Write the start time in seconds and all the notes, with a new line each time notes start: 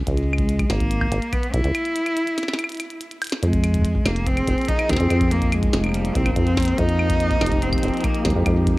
0.07 C#2 G#3, kick, closed hi-hat
0.17 closed hi-hat
0.33 claves
0.38 kick, closed hi-hat
0.49 closed hi-hat
0.59 kick, closed hi-hat, claves
0.70 G#1 A#3, snare, closed hi-hat
0.80 kick, closed hi-hat
0.91 closed hi-hat
1.01 kick, claves
1.12 G#1, closed hi-hat
1.22 closed hi-hat
1.33 B3, kick, closed hi-hat, claves
1.43 closed hi-hat
1.54 B1 E4, kick, closed hi-hat
1.64 C#2, closed hi-hat
1.75 closed hi-hat, claves
1.85 closed hi-hat
1.96 closed hi-hat
2.06 closed hi-hat, claves
2.17 closed hi-hat
2.27 closed hi-hat
2.38 snare, closed hi-hat
2.43 snare
2.48 snare, closed hi-hat, claves
2.54 snare, claves
2.59 closed hi-hat, claves
2.64 claves
2.69 closed hi-hat
2.72 closed hi-hat
2.75 closed hi-hat
2.77 closed hi-hat
2.80 closed hi-hat, claves
2.90 closed hi-hat
3.01 closed hi-hat
3.11 closed hi-hat
3.22 closed hi-hat, claves
3.24 closed hi-hat
3.27 closed hi-hat
3.30 snare, closed hi-hat
3.43 F2 F3 G#3, closed hi-hat
3.53 kick, closed hi-hat
3.64 G#4, closed hi-hat, claves
3.74 kick, closed hi-hat
3.77 kick
3.79 kick
3.82 A#3, kick, closed hi-hat
3.95 kick
4.06 F1 A#3, snare, closed hi-hat, claves
4.16 closed hi-hat
4.27 C4, kick, closed hi-hat
4.36 D#4, closed hi-hat, claves
4.48 F1, kick, closed hi-hat
4.58 closed hi-hat
4.62 closed hi-hat
4.65 kick, closed hi-hat
4.69 D#4, closed hi-hat
4.79 closed hi-hat, claves
4.89 D#2 C4, kick, snare, closed hi-hat
4.93 snare
4.96 F2, snare, closed hi-hat
5.10 F2, closed hi-hat, claves
5.21 kick, closed hi-hat
5.31 A#3, closed hi-hat
5.42 kick, closed hi-hat
5.52 G#3, closed hi-hat, claves
5.63 kick, closed hi-hat
5.73 F1, snare, closed hi-hat
5.84 closed hi-hat, claves
5.87 claves
5.89 claves
5.92 G3, closed hi-hat, claves
5.97 claves
6.00 claves
6.02 closed hi-hat, claves
6.15 C2 C4, kick, closed hi-hat
6.21 kick
6.26 F1, kick, closed hi-hat, claves
6.31 kick
6.36 F2 C4, kick, closed hi-hat
6.47 closed hi-hat
6.57 G4, kick, snare, closed hi-hat, claves
6.60 closed hi-hat
6.63 closed hi-hat
6.65 closed hi-hat
6.68 closed hi-hat
6.78 F2 D#4, kick, closed hi-hat
6.89 closed hi-hat
6.99 claves
7.10 kick, closed hi-hat
7.20 closed hi-hat
7.31 kick, closed hi-hat
7.41 F1, snare, claves
7.46 closed hi-hat
7.52 kick, closed hi-hat
7.62 C4, closed hi-hat
7.73 kick, closed hi-hat, claves
7.78 closed hi-hat
7.83 F1, closed hi-hat
7.88 closed hi-hat
7.94 closed hi-hat
7.97 closed hi-hat
8.01 kick, closed hi-hat
8.04 A#3, closed hi-hat, claves
8.15 closed hi-hat
8.25 D#2 G#3, kick, snare, closed hi-hat
8.30 closed hi-hat
8.36 F2
8.46 F2, kick, closed hi-hat, claves
8.67 kick, closed hi-hat